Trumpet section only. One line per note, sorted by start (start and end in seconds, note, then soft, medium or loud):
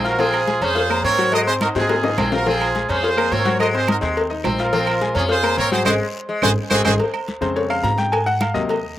0.05 0.19 F#4 medium
0.05 0.19 A#4 medium
0.20 0.62 F4 medium
0.20 0.61 G#4 loud
0.62 1.05 G#4 medium
0.62 1.05 C5 medium
1.04 1.31 A#4 medium
1.04 1.31 C#5 loud
1.33 1.40 C5 medium
1.33 1.39 D#5 loud
1.48 1.54 G#4 medium
1.48 1.54 C5 medium
1.62 1.68 F#4 medium
1.62 1.68 A#4 medium
1.77 2.29 F4 medium
1.77 2.29 G#4 medium
2.34 2.47 F#4 medium
2.34 2.47 A#4 medium
2.48 2.87 F4 medium
2.48 2.87 G#4 loud
2.90 3.32 G#4 medium
2.90 3.32 C5 loud
3.31 3.60 A#4 medium
3.31 3.60 C#5 loud
3.60 3.67 C5 medium
3.60 3.66 D#5 medium
3.76 3.88 G#4 medium
3.76 3.88 C5 medium
3.90 3.96 F#4 medium
3.90 3.96 A#4 medium
4.59 5.12 F4 medium
4.59 5.12 A#4 medium
5.16 5.22 F4 medium
5.16 5.22 G#4 medium
5.29 5.56 G#4 medium
5.29 5.56 C5 loud
5.57 5.71 A#4 loud
5.57 5.71 C#5 loud
5.71 5.83 G#4 medium
5.71 5.83 C5 medium
5.84 5.92 F#4 loud
5.84 5.92 G#4 loud
5.84 5.92 C5 loud
6.42 6.49 F#4 medium
6.42 6.49 G#4 loud
6.42 6.49 C5 loud
6.70 6.78 F#4 loud
6.70 6.78 G#4 loud
6.70 6.77 C5 loud
6.84 6.92 F#4 medium
6.84 6.92 G#4 loud
6.84 6.91 C5 loud